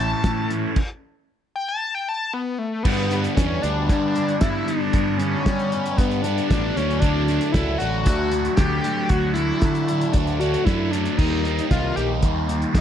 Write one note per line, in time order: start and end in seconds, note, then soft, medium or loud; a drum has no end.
0.00 0.13 A1 medium
0.00 0.24 A2 medium
0.00 0.24 E3 medium
0.00 0.24 A3 medium
0.00 0.25 C#4 medium
0.00 0.26 E4 medium
0.00 0.50 A5 medium
0.24 0.65 A2 medium
0.24 0.76 E3 medium
0.24 0.76 A3 medium
0.24 0.76 C#4 medium
0.24 0.77 E4 medium
0.24 kick loud
0.24 snare loud
0.24 closed hi-hat medium
0.50 snare soft
0.50 closed hi-hat medium
0.76 kick loud
0.76 crash medium
1.56 1.68 G5 medium
1.69 1.94 A5 loud
1.95 2.07 G5 medium
2.09 2.33 A5 medium
2.34 2.60 B3 medium
2.58 2.85 A3 medium
2.83 3.64 G2 medium
2.83 3.26 G2 medium
2.83 3.36 D3 medium
2.83 3.14 G3 medium
2.83 3.36 B3 loud
2.83 3.13 B3 medium
2.83 kick loud
2.83 crash loud
2.87 3.11 D4 medium
3.11 3.38 G3 medium
3.11 3.38 B3 medium
3.11 3.39 D4 medium
3.11 closed hi-hat medium
3.24 closed hi-hat medium
3.36 3.58 E2 medium
3.36 3.63 D3 medium
3.36 3.63 G3 medium
3.36 3.62 B3 medium
3.36 3.64 C#4 medium
3.36 3.62 D4 medium
3.36 kick loud
3.36 snare loud
3.36 closed hi-hat loud
3.62 3.89 D2 medium
3.62 4.17 G2 medium
3.62 3.89 D3 medium
3.62 3.90 G3 medium
3.62 3.91 B3 medium
3.62 3.87 D4 medium
3.62 3.92 D4 medium
3.62 closed hi-hat medium
3.88 4.30 G2 loud
3.88 4.40 D3 medium
3.88 4.16 G3 medium
3.88 4.37 D4 loud
3.88 kick loud
3.88 closed hi-hat loud
3.92 4.15 B3 medium
3.92 4.14 D4 medium
4.15 4.41 G3 medium
4.15 4.42 B3 medium
4.15 4.43 D4 medium
4.15 closed hi-hat medium
4.28 closed hi-hat soft
4.41 4.92 G2 medium
4.41 4.62 G2 loud
4.41 4.92 D3 loud
4.41 4.69 G3 loud
4.41 4.68 B3 loud
4.41 4.67 D4 medium
4.41 4.67 E4 loud
4.41 kick loud
4.41 snare loud
4.41 closed hi-hat loud
4.66 4.94 B3 medium
4.66 5.19 D4 loud
4.66 4.95 D4 medium
4.66 closed hi-hat medium
4.70 4.93 G3 medium
4.93 5.46 G2 medium
4.93 5.35 G2 medium
4.93 5.44 D3 loud
4.93 5.22 G3 medium
4.93 5.21 B3 medium
4.93 5.19 D4 loud
4.93 kick loud
4.93 closed hi-hat loud
5.17 5.99 C#4 loud
5.17 5.48 D4 medium
5.17 closed hi-hat medium
5.22 5.46 G3 medium
5.22 5.46 B3 medium
5.46 5.73 D3 medium
5.46 5.87 G3 medium
5.46 5.72 G3 medium
5.46 5.72 B3 medium
5.46 5.72 D4 medium
5.46 kick loud
5.46 snare loud
5.46 closed hi-hat medium
5.59 closed hi-hat soft
5.72 6.26 G2 medium
5.72 5.97 D3 medium
5.72 5.98 G3 medium
5.72 5.99 B3 medium
5.72 6.01 D4 medium
5.72 closed hi-hat medium
5.86 closed hi-hat medium
5.97 6.39 G2 loud
5.97 6.50 D3 medium
5.97 6.26 G3 medium
5.97 6.23 B3 loud
5.97 6.24 B3 medium
5.97 6.24 D4 medium
5.97 kick loud
5.97 closed hi-hat loud
6.11 closed hi-hat soft
6.22 6.51 B3 medium
6.22 6.48 D4 medium
6.22 6.53 D4 medium
6.22 snare soft
6.22 closed hi-hat medium
6.27 6.52 G3 medium
6.38 closed hi-hat soft
6.48 6.71 A1 loud
6.48 6.75 G2 medium
6.48 6.76 D3 medium
6.48 6.78 D4 loud
6.48 kick loud
6.48 snare loud
6.48 closed hi-hat loud
6.53 6.76 G3 loud
6.53 6.76 B3 medium
6.53 6.76 D4 loud
6.76 7.38 D2 loud
6.76 7.03 D3 medium
6.76 7.04 F#3 medium
6.76 7.05 A3 medium
6.76 7.01 C#4 loud
6.76 7.06 D4 medium
6.76 snare soft
6.76 closed hi-hat medium
6.90 closed hi-hat soft
7.00 7.54 D3 loud
7.00 7.54 D4 loud
7.00 kick loud
7.00 closed hi-hat loud
7.04 7.31 F#3 loud
7.04 7.29 A3 medium
7.04 7.28 D4 loud
7.28 7.55 F#3 medium
7.28 7.56 A3 medium
7.28 7.57 D4 medium
7.28 closed hi-hat medium
7.41 closed hi-hat medium
7.52 7.75 C#2 medium
7.52 7.83 D3 medium
7.52 7.82 F#3 medium
7.52 7.78 E4 loud
7.52 kick loud
7.52 snare loud
7.52 closed hi-hat medium
7.56 7.81 A3 medium
7.56 7.80 D4 medium
7.78 8.06 A1 medium
7.78 8.06 F#3 medium
7.78 8.07 A3 medium
7.78 8.08 D4 medium
7.78 8.03 F#4 loud
7.78 closed hi-hat medium
7.83 8.04 D3 medium
8.03 8.47 D2 loud
8.03 8.57 D3 medium
8.03 8.34 F#3 medium
8.03 8.53 F#4 loud
8.03 kick loud
8.03 closed hi-hat loud
8.08 8.33 A3 medium
8.08 8.30 D4 medium
8.31 8.58 F#3 medium
8.31 8.59 A3 medium
8.31 8.60 D4 medium
8.31 closed hi-hat medium
8.45 closed hi-hat soft
8.56 8.79 D2 medium
8.56 9.09 D3 medium
8.56 8.86 F#3 medium
8.56 8.84 A3 loud
8.56 9.11 G4 loud
8.56 kick loud
8.56 snare loud
8.56 closed hi-hat loud
8.61 8.83 D4 medium
8.84 9.09 F#3 medium
8.84 9.10 A3 medium
8.84 9.11 D4 medium
8.84 closed hi-hat medium
9.09 9.51 D2 medium
9.09 9.60 D3 medium
9.09 9.38 F#3 loud
9.09 9.37 A3 loud
9.09 9.35 D4 loud
9.09 9.33 F#4 loud
9.09 kick loud
9.09 closed hi-hat loud
9.34 9.63 D4 medium
9.34 10.09 E4 loud
9.34 closed hi-hat medium
9.38 9.62 F#3 medium
9.38 9.62 A3 medium
9.61 9.90 D3 medium
9.61 10.03 D3 medium
9.61 9.89 F#3 medium
9.61 9.88 A3 medium
9.61 9.87 D4 medium
9.61 kick loud
9.61 snare loud
9.61 closed hi-hat medium
9.75 closed hi-hat medium
9.88 10.13 D3 medium
9.88 10.14 F#3 medium
9.88 10.15 A3 medium
9.88 10.16 D4 medium
9.88 closed hi-hat medium
10.01 closed hi-hat soft
10.12 10.55 D2 loud
10.12 10.64 D3 medium
10.12 10.42 F#3 medium
10.12 10.41 D4 loud
10.12 kick loud
10.12 closed hi-hat loud
10.16 10.41 A3 medium
10.16 10.39 D4 medium
10.27 closed hi-hat soft
10.39 10.65 F#3 medium
10.39 10.66 A3 medium
10.39 10.67 D4 medium
10.39 10.66 F#4 loud
10.39 closed hi-hat medium
10.54 closed hi-hat soft
10.65 11.07 F#2 loud
10.65 11.17 D3 loud
10.65 10.93 F#3 medium
10.65 10.92 A3 loud
10.65 10.91 D4 loud
10.65 10.92 E4 loud
10.65 kick loud
10.65 snare loud
10.65 closed hi-hat medium
10.91 11.18 F#3 medium
10.91 11.17 A3 medium
10.91 11.17 D4 loud
10.91 11.17 D4 medium
10.91 closed hi-hat medium
11.05 closed hi-hat soft
11.17 11.59 D#2 loud
11.17 11.70 D#3 medium
11.17 11.47 G3 loud
11.17 11.46 A#3 medium
11.17 11.66 D#4 loud
11.17 11.44 D#4 loud
11.17 kick loud
11.17 crash loud
11.45 11.71 G3 medium
11.45 11.72 A#3 medium
11.45 11.73 D#4 medium
11.45 closed hi-hat medium
11.59 closed hi-hat medium
11.71 11.91 C2 medium
11.71 11.99 D#3 medium
11.71 11.97 G3 medium
11.71 11.97 A#3 medium
11.71 11.95 D#4 medium
11.71 11.95 F4 loud
11.71 kick loud
11.71 snare loud
11.71 closed hi-hat medium
11.96 12.23 A#1 medium
11.96 12.22 D#3 medium
11.96 12.23 G3 medium
11.96 12.24 A#3 medium
11.96 12.25 D#4 medium
11.96 12.08 G4 medium
11.96 closed hi-hat medium
12.22 12.64 D#2 loud
12.22 12.72 D#3 medium
12.22 12.50 G3 medium
12.22 12.49 A#3 medium
12.22 12.47 D#4 medium
12.22 kick loud
12.22 closed hi-hat loud
12.48 12.73 G3 medium
12.48 12.74 A#3 medium
12.48 12.75 D#4 medium
12.48 snare soft
12.48 closed hi-hat medium
12.62 closed hi-hat medium
12.73 12.81 D#2 medium
12.73 12.81 D#3 medium
12.73 12.81 G3 medium
12.73 12.81 A#3 loud
12.73 12.81 D#4 loud
12.73 kick loud
12.73 snare loud
12.73 closed hi-hat loud